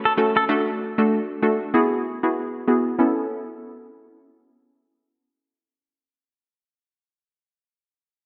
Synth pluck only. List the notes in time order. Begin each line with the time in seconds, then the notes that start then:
0.17 A3 C#4 F#4 A4
0.49 A3 D4 F#4 A4
0.98 A3 D4 F#4 A4
1.42 A3 D4 F#4 A4
1.74 B3 E4 F#4 G#4
2.23 B3 E4 F#4 G#4
2.68 B3 E4 F#4 G#4
2.99 B3 C#4 E4 A4